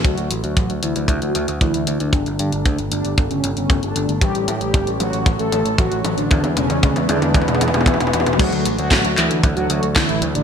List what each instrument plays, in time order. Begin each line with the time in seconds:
0.04 picked electric bass D2, analog synth pad D3 F#3 A3 F#4 A4, analog polysynth F#3 F#4, kick, closed hi-hat, mid tom
0.18 picked electric bass D2, closed hi-hat
0.31 picked electric bass A1, closed hi-hat
0.44 picked electric bass D2, analog polysynth F#3 F#4, closed hi-hat
0.57 picked electric bass A1, kick, closed hi-hat, mid tom
0.70 picked electric bass D2, closed hi-hat
0.83 picked electric bass D2, analog polysynth E3 E4, closed hi-hat
0.96 picked electric bass D2, closed hi-hat
1.08 picked electric bass D2, kick, closed hi-hat, mid tom
1.22 picked electric bass D2, analog polysynth F#3 F#4, closed hi-hat
1.35 picked electric bass D2, closed hi-hat
1.48 picked electric bass D2, closed hi-hat
1.61 picked electric bass D2, analog polysynth E3 E4, kick, closed hi-hat, mid tom
1.74 picked electric bass D2, closed hi-hat
1.87 picked electric bass D2, closed hi-hat
2.00 picked electric bass D2, analog polysynth D3 D4, closed hi-hat
2.13 picked electric bass G1, analog synth pad A3 B3 G4, kick, closed hi-hat, mid tom
2.26 picked electric bass G1, closed hi-hat
2.39 picked electric bass G2, analog polysynth D3 D4, closed hi-hat
2.52 picked electric bass G1, closed hi-hat
2.65 picked electric bass D2, kick, closed hi-hat, mid tom
2.79 picked electric bass G1, closed hi-hat
2.91 picked electric bass G1, analog polysynth D3 D4, closed hi-hat
3.05 picked electric bass G1, closed hi-hat
3.18 picked electric bass G1, kick, closed hi-hat, mid tom
3.31 picked electric bass G1, analog polysynth C#3 C#4, closed hi-hat
3.44 picked electric bass G1, closed hi-hat
3.57 picked electric bass G1, analog polysynth C#3 C#4, closed hi-hat
3.70 picked electric bass G1, kick, closed hi-hat, mid tom
3.83 picked electric bass G1, analog polysynth D3 D4, closed hi-hat
3.96 picked electric bass G1, closed hi-hat
4.09 picked electric bass G1, closed hi-hat
4.21 picked electric bass A1, analog synth pad E3 C#4 C#5, analog polysynth G3 G4, kick, closed hi-hat, mid tom
4.35 picked electric bass A1, closed hi-hat
4.48 picked electric bass A2, closed hi-hat, mid tom
4.61 picked electric bass A1, analog polysynth G3 G4, closed hi-hat
4.74 picked electric bass G1, kick, closed hi-hat, mid tom
4.87 picked electric bass A1, closed hi-hat
5.00 picked electric bass A1, analog polysynth F#3 F#4, closed hi-hat, mid tom
5.13 picked electric bass A1, closed hi-hat
5.26 picked electric bass A1, kick, closed hi-hat, mid tom
5.39 picked electric bass A1, analog polysynth A3 A4, closed hi-hat
5.52 picked electric bass A1, closed hi-hat, mid tom
5.65 picked electric bass A1, closed hi-hat
5.78 picked electric bass A1, analog polysynth F#3 F#4, kick, closed hi-hat, mid tom
5.91 picked electric bass A1, closed hi-hat
6.04 picked electric bass A1, closed hi-hat, mid tom
6.18 picked electric bass A1, analog polysynth D3 D4, closed hi-hat
6.31 picked electric bass E2, analog synth pad G#3 B3 G#4 B4, kick, closed hi-hat, mid tom
6.44 picked electric bass E2, closed hi-hat, mid tom
6.57 picked electric bass E1, analog polysynth C#3 C#4, closed hi-hat, mid tom
6.70 picked electric bass E2, closed hi-hat, mid tom
6.83 picked electric bass D2, kick, closed hi-hat, mid tom
6.96 picked electric bass E2, closed hi-hat, mid tom
7.09 picked electric bass E2, analog polysynth D3 D4, closed hi-hat, mid tom
7.22 picked electric bass E2, closed hi-hat, mid tom
7.34 picked electric bass E2, kick, closed hi-hat, mid tom
7.42 mid tom
7.48 picked electric bass E2, analog polysynth B2 B3, closed hi-hat, mid tom
7.55 mid tom
7.61 picked electric bass E2, closed hi-hat, mid tom
7.68 mid tom
7.74 picked electric bass E2, analog polysynth B2 B3, closed hi-hat, mid tom
7.81 mid tom
7.86 picked electric bass E2, kick, closed hi-hat, mid tom
7.94 mid tom
8.00 picked electric bass E1, analog polysynth B2 B3, closed hi-hat, mid tom
8.07 mid tom
8.13 picked electric bass E2, closed hi-hat, mid tom
8.20 mid tom
8.26 picked electric bass E1, closed hi-hat, mid tom
8.33 mid tom
8.39 picked electric bass D2, analog synth pad D3 F#3 A3 F#4 A4, analog polysynth F#3 F#4, kick, closed hi-hat, crash
8.52 picked electric bass D2, closed hi-hat
8.65 picked electric bass A1, closed hi-hat
8.78 picked electric bass D2, analog polysynth F#3 F#4, closed hi-hat
8.91 picked electric bass A1, kick, snare, clap, closed hi-hat
9.04 picked electric bass D2, closed hi-hat
9.17 picked electric bass D2, analog polysynth E3 E4, clap, closed hi-hat
9.31 picked electric bass D2, closed hi-hat
9.43 picked electric bass D2, kick, closed hi-hat
9.56 picked electric bass D2, analog polysynth F#3 F#4, closed hi-hat
9.70 picked electric bass D2, closed hi-hat
9.83 picked electric bass D2, closed hi-hat
9.96 picked electric bass D2, analog polysynth E3 E4, kick, snare, clap, closed hi-hat
10.09 picked electric bass A1, closed hi-hat
10.22 picked electric bass D2, closed hi-hat
10.35 picked electric bass A1, analog polysynth D3 D4, closed hi-hat